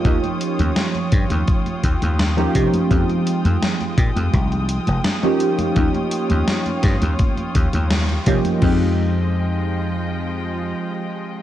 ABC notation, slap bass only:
X:1
M:4/4
L:1/16
Q:1/4=84
K:Fm
V:1 name="Slap bass" clef=bass
E,, z2 E,, z2 G,, E,, z2 E,, E,,2 z C, z | F,, z2 F,, z2 B,, F,, C,,2 z F,,, z4 | E,, z2 E,, z2 G,, E,, z2 E,, E,,2 z C, z | F,,12 z4 |]